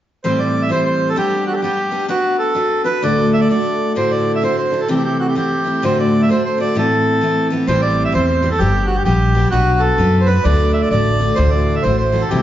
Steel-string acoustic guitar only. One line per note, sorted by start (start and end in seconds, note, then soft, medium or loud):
0.24 0.70 A2 medium
0.24 0.68 E3 medium
0.24 0.69 G3 medium
0.24 0.70 C4 medium
0.24 0.71 G4 medium
0.69 1.16 E3 soft
0.69 1.15 G3 medium
0.69 1.17 C4 medium
0.69 1.16 G4 medium
1.16 1.61 G3 medium
1.16 1.63 B3 medium
1.16 1.64 D4 medium
1.16 1.63 G4 medium
1.62 1.90 G3 medium
1.62 1.90 B3 medium
1.62 1.91 D4 medium
1.62 1.92 G4 medium
1.91 2.08 G3 soft
1.91 2.07 B3 soft
1.91 2.08 D4 medium
1.91 2.10 G4 medium
2.08 2.53 B3 medium
2.08 2.55 D4 medium
2.08 2.56 F#4 medium
2.08 2.56 B4 medium
2.54 2.83 B3 soft
2.54 2.84 D4 medium
2.54 2.85 F#4 medium
2.54 2.86 B4 medium
2.84 3.02 B3 soft
2.84 3.02 D4 medium
2.84 3.03 F#4 soft
2.84 3.03 B4 medium
3.02 3.49 D2 medium
3.02 3.49 A2 medium
3.02 3.48 D3 medium
3.02 3.50 A3 medium
3.02 3.49 D4 medium
3.02 3.50 F#4 medium
3.49 3.95 D3 soft
3.49 3.96 A3 medium
3.49 3.95 D4 medium
3.49 3.96 F#4 medium
3.95 4.42 D2 medium
3.95 4.42 A2 medium
3.95 4.40 D3 medium
3.95 4.42 D4 medium
3.95 4.42 E4 medium
3.95 4.43 F#4 medium
4.42 4.69 D3 medium
4.42 4.71 D4 medium
4.42 4.71 E4 medium
4.42 4.72 F#4 medium
4.71 4.88 D3 soft
4.71 4.89 D4 medium
4.71 4.89 E4 medium
4.71 4.90 F#4 medium
4.88 5.35 C3 medium
4.88 5.34 E3 medium
4.88 5.37 A3 medium
4.88 5.35 C4 medium
4.88 5.36 E4 medium
5.35 5.63 E3 medium
5.35 5.65 A3 medium
5.35 5.64 C4 medium
5.35 5.65 E4 medium
5.64 5.81 E3 soft
5.64 5.82 A3 medium
5.64 5.82 C4 soft
5.64 5.83 E4 soft
5.82 6.28 D2 medium
5.82 6.29 A2 medium
5.82 6.27 D3 medium
5.82 6.29 A3 medium
5.82 6.29 D4 medium
5.82 6.29 F#4 medium
6.28 6.57 D3 soft
6.28 6.57 A3 medium
6.28 6.58 D4 medium
6.28 6.59 F#4 medium
6.58 6.74 D3 soft
6.58 6.75 A3 soft
6.58 6.75 D4 soft
6.58 6.76 F#4 soft
6.75 7.21 A2 medium
6.75 7.20 E3 medium
6.75 7.21 B3 medium
6.75 7.22 C4 medium
6.75 7.22 E4 medium
7.21 7.49 E3 medium
7.21 7.51 B3 soft
7.21 7.51 C4 medium
7.21 7.51 E4 medium
7.50 7.67 E3 medium
7.50 7.68 B3 medium
7.50 7.68 C4 medium
7.50 7.68 E4 medium
7.67 8.13 A2 medium
7.67 8.11 E3 medium
7.67 8.13 G3 medium
7.67 8.14 C4 medium
7.67 8.14 G4 medium
8.12 8.41 E3 medium
8.12 8.42 G3 medium
8.12 8.43 C4 medium
8.12 8.43 G4 medium
8.42 8.59 E3 medium
8.42 8.59 G3 medium
8.42 8.60 C4 medium
8.42 8.61 G4 medium
8.60 9.04 G3 medium
8.60 9.05 B3 medium
8.60 9.07 D4 medium
8.60 9.07 G4 medium
9.05 9.33 G3 medium
9.05 9.35 B3 medium
9.05 9.36 D4 medium
9.05 9.36 G4 medium
9.35 9.52 G3 medium
9.35 9.51 B3 medium
9.35 9.52 D4 medium
9.35 9.53 G4 medium
9.52 9.97 B3 medium
9.52 9.99 D4 medium
9.52 10.00 F#4 medium
9.52 10.00 B4 medium
9.98 10.25 B3 medium
9.98 10.27 D4 medium
9.98 10.27 F#4 medium
9.98 10.28 B4 medium
10.27 10.44 B3 soft
10.27 10.45 D4 medium
10.27 10.45 F#4 medium
10.27 10.46 B4 medium
10.44 10.91 D2 medium
10.44 10.91 A2 medium
10.44 10.91 D3 medium
10.44 10.93 A3 medium
10.44 10.91 D4 medium
10.44 10.92 F#4 medium
10.92 11.18 D3 medium
10.92 11.20 A3 medium
10.92 11.20 D4 medium
10.92 11.21 F#4 medium
11.19 11.37 D3 soft
11.19 11.36 A3 medium
11.19 11.37 D4 medium
11.19 11.37 F#4 medium
11.36 11.83 D2 medium
11.36 11.84 A2 medium
11.36 11.82 E3 medium
11.36 11.84 A3 medium
11.36 11.84 D4 medium
11.36 11.84 F#4 medium
11.84 12.11 E3 medium
11.84 12.12 A3 medium
11.84 12.13 D4 medium
11.84 12.14 F#4 medium
12.12 12.30 E3 soft
12.12 12.30 A3 medium
12.12 12.31 D4 soft
12.12 12.31 F#4 medium
12.31 12.42 C3 medium
12.31 12.42 E3 medium
12.31 12.42 A3 medium
12.31 12.42 C4 medium
12.31 12.42 E4 medium